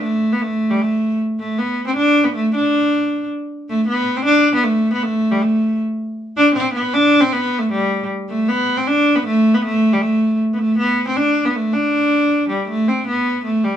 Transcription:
0.02 0.34 A3 medium
0.33 0.43 B3 medium
0.42 0.72 A3 medium
0.70 0.83 G3 medium
0.81 1.19 A3 medium
1.40 1.60 A3 medium
1.59 1.86 B3 medium
1.87 1.95 C4 medium
1.97 2.26 D4 medium
2.24 2.34 B3 medium
2.35 2.52 A3 medium
2.55 3.27 D4 medium
3.69 3.87 A3 medium
3.88 4.18 B3 loud
4.17 4.25 C4 loud
4.25 4.52 D4 loud
4.55 4.65 B3 medium
4.64 4.93 A3 medium
4.93 5.04 B3 medium
5.03 5.33 A3 loud
5.32 5.43 G3 medium
5.42 5.80 A3 medium
6.37 6.54 D4 loud
6.55 6.73 C4 loud
6.74 6.95 B3 loud
6.93 7.22 D4 loud
7.21 7.34 C4 loud
7.33 7.60 B3 loud
7.59 7.71 A3 medium
7.72 8.07 G3 medium
8.29 8.50 A3 medium
8.49 8.78 B3 loud
8.77 8.89 C4 medium
8.87 9.17 D4 loud
9.16 9.25 B3 medium
9.26 9.56 A3 loud
9.54 9.63 B3 medium
9.65 9.94 A3 loud
9.93 10.03 G3 medium
10.01 10.39 A3 medium
10.53 10.60 B3 medium
10.59 10.78 A3 medium
10.79 11.05 B3 loud
11.07 11.19 C4 medium
11.17 11.47 D4 loud
11.46 11.57 B3 medium
11.56 11.75 A3 medium
11.73 12.49 D4 medium
12.49 12.67 G3 medium
12.68 12.90 A3 medium
12.88 13.07 C4 medium
13.07 13.43 B3 medium
13.44 13.66 A3 medium
13.65 13.77 G3 medium

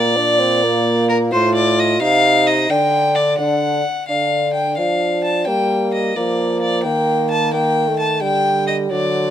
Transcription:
0.00 1.30 A#2 medium
0.00 0.18 A#3 medium
0.00 1.07 D5 medium
0.16 0.41 D4 medium
0.40 0.65 C4 medium
0.63 1.34 A#3 medium
1.09 1.17 A#4 medium
1.32 2.03 A2 medium
1.32 2.02 F4 medium
1.32 1.55 C5 medium
1.55 1.81 D5 medium
1.79 2.01 D#5 medium
2.01 2.69 C3 medium
2.01 2.70 D#4 medium
2.01 2.48 F5 loud
2.47 2.71 D#5 medium
2.70 3.38 D3 medium
2.70 3.38 D4 medium
2.70 3.17 G5 medium
3.15 3.38 D5 medium
3.38 3.85 D3 medium
3.38 3.86 D4 medium
3.38 4.08 F#5 medium
4.09 4.80 D3 medium
4.09 4.75 D4 medium
4.09 4.52 F5 medium
4.54 4.77 G5 medium
4.78 5.47 F3 soft
4.78 5.49 D4 medium
4.78 5.23 F5 medium
5.24 5.47 A5 medium
5.47 6.15 G3 medium
5.47 6.16 A#3 medium
5.47 5.92 G5 medium
5.94 6.18 D#5 medium
6.16 6.86 F3 soft
6.16 6.84 A#3 medium
6.16 6.61 D5 medium
6.62 6.83 D5 medium
6.84 8.23 D#3 medium
6.84 7.52 A#3 medium
6.84 7.29 G5 medium
7.31 7.53 A5 medium
7.53 7.89 A#3 medium
7.53 7.99 G5 medium
7.88 8.23 A3 medium
8.00 8.22 A5 medium
8.22 8.90 D3 medium
8.22 8.92 G3 medium
8.22 8.67 G5 medium
8.67 8.75 D#5 medium
8.90 9.30 D3 medium
8.90 9.30 F#3 medium
8.90 9.30 D5 medium

